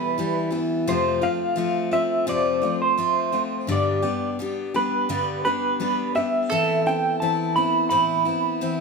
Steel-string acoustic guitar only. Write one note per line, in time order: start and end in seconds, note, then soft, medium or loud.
0.00 0.17 E3 soft
0.00 0.18 G3 soft
0.00 0.18 B3 soft
0.00 0.18 E4 soft
0.18 0.51 E3 medium
0.18 0.51 G3 medium
0.18 0.51 B3 medium
0.18 0.49 E4 medium
0.51 0.87 E3 soft
0.51 0.87 G3 soft
0.51 0.87 B3 soft
0.51 0.87 E4 soft
0.87 1.23 F2 medium
0.87 1.23 C3 medium
0.87 1.22 F3 medium
0.87 1.22 A3 medium
0.87 1.21 C4 medium
0.87 1.20 F4 medium
1.22 1.54 F3 soft
1.22 1.56 A3 soft
1.22 1.56 C4 soft
1.22 1.57 F4 soft
1.56 1.92 F3 medium
1.56 1.92 A3 medium
1.56 1.91 C4 medium
1.56 1.90 F4 medium
1.91 2.26 F3 soft
1.91 2.26 A3 soft
1.91 2.27 C4 soft
1.91 2.27 F4 soft
2.27 2.63 F2 medium
2.27 2.63 C3 medium
2.27 2.63 F3 medium
2.27 2.62 A3 medium
2.27 2.62 C4 medium
2.27 2.60 F4 medium
2.62 2.96 F3 soft
2.62 2.97 A3 soft
2.62 2.97 C4 soft
2.62 2.98 F4 soft
2.98 3.33 F3 medium
2.98 3.32 A3 medium
2.98 3.32 C4 medium
2.98 3.31 F4 medium
3.32 3.68 F3 soft
3.32 3.68 A3 soft
3.32 3.68 C4 soft
3.32 3.68 F4 soft
3.67 4.03 G2 medium
3.67 4.04 D3 medium
3.67 4.04 G3 medium
3.67 4.02 B3 medium
3.67 4.02 D4 medium
3.67 4.01 G4 medium
4.02 4.38 G3 soft
4.02 4.39 B3 soft
4.02 4.38 D4 soft
4.02 4.38 G4 medium
4.39 4.74 G3 soft
4.39 4.74 B3 medium
4.39 4.73 D4 medium
4.39 4.73 G4 medium
4.74 5.09 G3 soft
4.74 5.08 B3 soft
4.74 5.08 D4 soft
4.74 5.09 G4 soft
5.09 5.44 G2 medium
5.09 5.44 D3 medium
5.09 5.44 G3 medium
5.09 5.44 B3 medium
5.09 5.44 D4 medium
5.09 5.44 G4 medium
5.45 5.78 G3 soft
5.45 5.79 B3 soft
5.45 5.79 D4 soft
5.45 5.80 G4 soft
5.80 6.15 G3 medium
5.80 6.15 B3 medium
5.80 6.15 D4 medium
5.80 6.14 G4 medium
6.15 6.51 G3 soft
6.15 6.51 B3 soft
6.15 6.50 D4 soft
6.15 6.50 G4 soft
6.51 6.85 A2 medium
6.51 6.86 E3 medium
6.51 6.86 B3 medium
6.51 6.86 C4 medium
6.51 6.85 E4 medium
6.86 7.21 B3 soft
6.86 7.21 C4 soft
6.86 7.21 E4 soft
7.22 7.56 E3 medium
7.22 7.56 B3 medium
7.22 7.56 C4 medium
7.22 7.55 E4 medium
7.56 7.91 B3 soft
7.56 7.90 C4 soft
7.56 7.90 E4 soft
7.90 8.25 A2 medium
7.90 8.25 E3 medium
7.90 8.25 B3 medium
7.90 8.26 C4 medium
7.90 8.24 E4 medium
8.25 8.60 B3 soft
8.25 8.60 C4 soft
8.25 8.60 E4 soft
8.61 8.80 E3 medium
8.61 8.80 B3 medium
8.61 8.80 C4 medium
8.61 8.80 E4 medium